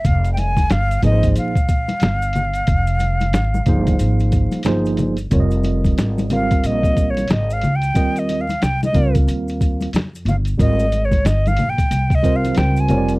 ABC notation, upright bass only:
X:1
M:4/4
L:1/16
Q:"Swing 16ths" 1/4=91
K:Fm
V:1 name="Upright bass" clef=bass
F,,,4 G,,,2 A,,,2 B,,,3 z G,,,4 | F,,,4 A,,,2 G,,,2 A,,,3 z G,,,4 | F,,,4 A,,,4 B,,,4 A,,,2 D,,2 | E,,4 C,,2 D,,2 E,,4 F,,2 G,,,2 |
A,,,4 G,,,2 B,,,2 C,,4 D,,2 F,,,2 |]